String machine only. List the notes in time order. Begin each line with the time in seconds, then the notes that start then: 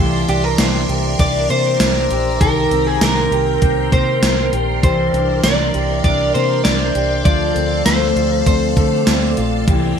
Already playing: A#4 D5 E5 C6
2.40 A#4 G5 A#5
4.83 D5 E5
7.26 A4 F5
9.68 A#3 E5 C6